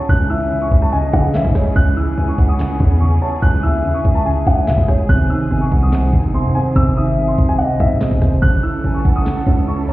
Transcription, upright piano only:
0, 0, Header, 1, 2, 480
1, 0, Start_track
1, 0, Key_signature, 4, "minor"
1, 0, Tempo, 416667
1, 106, Time_signature, 4, 2, 24, 8
1, 11438, End_track
2, 0, Start_track
2, 0, Title_t, "Upright piano"
2, 0, Program_c, 0, 0
2, 108, Note_on_c, 0, 90, 115
2, 312, Note_off_c, 0, 90, 0
2, 344, Note_on_c, 0, 88, 80
2, 683, Note_off_c, 0, 88, 0
2, 710, Note_on_c, 0, 85, 83
2, 913, Note_off_c, 0, 85, 0
2, 948, Note_on_c, 0, 81, 84
2, 1049, Note_off_c, 0, 81, 0
2, 1065, Note_on_c, 0, 80, 91
2, 1270, Note_off_c, 0, 80, 0
2, 1306, Note_on_c, 0, 78, 83
2, 1511, Note_off_c, 0, 78, 0
2, 1552, Note_on_c, 0, 76, 83
2, 1754, Note_off_c, 0, 76, 0
2, 2026, Note_on_c, 0, 90, 126
2, 2231, Note_off_c, 0, 90, 0
2, 2267, Note_on_c, 0, 88, 80
2, 2604, Note_off_c, 0, 88, 0
2, 2630, Note_on_c, 0, 85, 75
2, 2833, Note_off_c, 0, 85, 0
2, 2862, Note_on_c, 0, 87, 75
2, 3428, Note_off_c, 0, 87, 0
2, 3461, Note_on_c, 0, 85, 83
2, 3668, Note_off_c, 0, 85, 0
2, 3706, Note_on_c, 0, 81, 80
2, 3911, Note_off_c, 0, 81, 0
2, 3942, Note_on_c, 0, 90, 106
2, 4148, Note_off_c, 0, 90, 0
2, 4182, Note_on_c, 0, 88, 89
2, 4522, Note_off_c, 0, 88, 0
2, 4541, Note_on_c, 0, 85, 74
2, 4748, Note_off_c, 0, 85, 0
2, 4780, Note_on_c, 0, 81, 84
2, 4885, Note_off_c, 0, 81, 0
2, 4902, Note_on_c, 0, 80, 78
2, 5108, Note_off_c, 0, 80, 0
2, 5151, Note_on_c, 0, 78, 85
2, 5353, Note_off_c, 0, 78, 0
2, 5383, Note_on_c, 0, 76, 76
2, 5589, Note_off_c, 0, 76, 0
2, 5864, Note_on_c, 0, 90, 124
2, 6070, Note_off_c, 0, 90, 0
2, 6104, Note_on_c, 0, 88, 82
2, 6443, Note_off_c, 0, 88, 0
2, 6464, Note_on_c, 0, 85, 74
2, 6669, Note_off_c, 0, 85, 0
2, 6712, Note_on_c, 0, 87, 77
2, 7273, Note_off_c, 0, 87, 0
2, 7308, Note_on_c, 0, 84, 88
2, 7512, Note_off_c, 0, 84, 0
2, 7544, Note_on_c, 0, 80, 88
2, 7750, Note_off_c, 0, 80, 0
2, 7787, Note_on_c, 0, 88, 111
2, 7991, Note_off_c, 0, 88, 0
2, 8027, Note_on_c, 0, 87, 84
2, 8364, Note_off_c, 0, 87, 0
2, 8384, Note_on_c, 0, 84, 72
2, 8590, Note_off_c, 0, 84, 0
2, 8627, Note_on_c, 0, 80, 82
2, 8729, Note_off_c, 0, 80, 0
2, 8738, Note_on_c, 0, 78, 85
2, 8946, Note_off_c, 0, 78, 0
2, 8985, Note_on_c, 0, 76, 88
2, 9190, Note_off_c, 0, 76, 0
2, 9223, Note_on_c, 0, 75, 83
2, 9429, Note_off_c, 0, 75, 0
2, 9700, Note_on_c, 0, 90, 127
2, 9907, Note_off_c, 0, 90, 0
2, 9943, Note_on_c, 0, 88, 79
2, 10282, Note_off_c, 0, 88, 0
2, 10303, Note_on_c, 0, 85, 72
2, 10509, Note_off_c, 0, 85, 0
2, 10549, Note_on_c, 0, 87, 90
2, 11111, Note_off_c, 0, 87, 0
2, 11148, Note_on_c, 0, 85, 85
2, 11352, Note_off_c, 0, 85, 0
2, 11392, Note_on_c, 0, 81, 80
2, 11438, Note_off_c, 0, 81, 0
2, 11438, End_track
0, 0, End_of_file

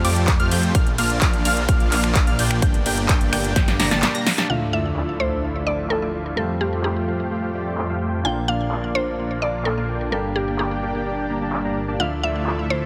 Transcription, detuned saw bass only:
0, 0, Header, 1, 2, 480
1, 0, Start_track
1, 0, Key_signature, -1, "minor"
1, 0, Tempo, 468750
1, 767, Time_signature, 4, 2, 24, 8
1, 13166, End_track
2, 0, Start_track
2, 0, Title_t, "Detuned saw bass"
2, 0, Program_c, 0, 39
2, 48, Note_on_c, 0, 41, 98
2, 383, Note_off_c, 0, 41, 0
2, 409, Note_on_c, 0, 41, 99
2, 504, Note_off_c, 0, 41, 0
2, 528, Note_on_c, 0, 41, 97
2, 743, Note_off_c, 0, 41, 0
2, 767, Note_on_c, 0, 34, 96
2, 983, Note_off_c, 0, 34, 0
2, 1007, Note_on_c, 0, 34, 95
2, 1223, Note_off_c, 0, 34, 0
2, 1247, Note_on_c, 0, 34, 100
2, 1463, Note_off_c, 0, 34, 0
2, 1488, Note_on_c, 0, 34, 94
2, 1703, Note_off_c, 0, 34, 0
2, 1727, Note_on_c, 0, 34, 97
2, 1943, Note_off_c, 0, 34, 0
2, 1968, Note_on_c, 0, 34, 97
2, 2303, Note_off_c, 0, 34, 0
2, 2327, Note_on_c, 0, 34, 99
2, 2423, Note_off_c, 0, 34, 0
2, 2447, Note_on_c, 0, 34, 96
2, 2663, Note_off_c, 0, 34, 0
2, 2686, Note_on_c, 0, 31, 97
2, 2902, Note_off_c, 0, 31, 0
2, 2927, Note_on_c, 0, 31, 98
2, 3143, Note_off_c, 0, 31, 0
2, 3166, Note_on_c, 0, 31, 97
2, 3382, Note_off_c, 0, 31, 0
2, 3407, Note_on_c, 0, 31, 97
2, 3623, Note_off_c, 0, 31, 0
2, 3646, Note_on_c, 0, 31, 101
2, 3862, Note_off_c, 0, 31, 0
2, 3886, Note_on_c, 0, 31, 100
2, 3982, Note_off_c, 0, 31, 0
2, 4006, Note_on_c, 0, 31, 100
2, 4126, Note_off_c, 0, 31, 0
2, 4606, Note_on_c, 0, 38, 82
2, 6502, Note_off_c, 0, 38, 0
2, 6527, Note_on_c, 0, 41, 81
2, 8423, Note_off_c, 0, 41, 0
2, 8446, Note_on_c, 0, 34, 82
2, 10342, Note_off_c, 0, 34, 0
2, 10367, Note_on_c, 0, 31, 84
2, 12263, Note_off_c, 0, 31, 0
2, 12287, Note_on_c, 0, 38, 82
2, 13166, Note_off_c, 0, 38, 0
2, 13166, End_track
0, 0, End_of_file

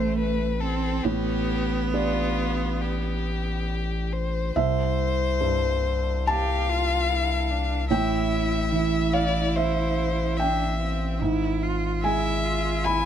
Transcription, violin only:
0, 0, Header, 1, 2, 480
1, 0, Start_track
1, 0, Key_signature, 0, "minor"
1, 0, Tempo, 875912
1, 575, Time_signature, 4, 2, 24, 8
1, 2025, Tempo, 860832
1, 3465, Tempo, 820793
1, 7427, End_track
2, 0, Start_track
2, 0, Title_t, "Violin"
2, 0, Program_c, 0, 40
2, 0, Note_on_c, 0, 72, 67
2, 96, Note_off_c, 0, 72, 0
2, 99, Note_on_c, 0, 71, 66
2, 329, Note_on_c, 0, 69, 59
2, 337, Note_off_c, 0, 71, 0
2, 565, Note_on_c, 0, 67, 60
2, 574, Note_off_c, 0, 69, 0
2, 1006, Note_off_c, 0, 67, 0
2, 1051, Note_on_c, 0, 65, 66
2, 1543, Note_on_c, 0, 67, 57
2, 1551, Note_off_c, 0, 65, 0
2, 2265, Note_on_c, 0, 72, 61
2, 2274, Note_off_c, 0, 67, 0
2, 2500, Note_off_c, 0, 72, 0
2, 2504, Note_on_c, 0, 72, 85
2, 3457, Note_on_c, 0, 77, 93
2, 3466, Note_off_c, 0, 72, 0
2, 4410, Note_off_c, 0, 77, 0
2, 4413, Note_on_c, 0, 76, 75
2, 5135, Note_on_c, 0, 74, 75
2, 5144, Note_off_c, 0, 76, 0
2, 5385, Note_on_c, 0, 72, 74
2, 5394, Note_off_c, 0, 74, 0
2, 5861, Note_on_c, 0, 76, 73
2, 5870, Note_off_c, 0, 72, 0
2, 6342, Note_off_c, 0, 76, 0
2, 6827, Note_on_c, 0, 76, 83
2, 7304, Note_on_c, 0, 80, 86
2, 7313, Note_off_c, 0, 76, 0
2, 7427, Note_off_c, 0, 80, 0
2, 7427, End_track
0, 0, End_of_file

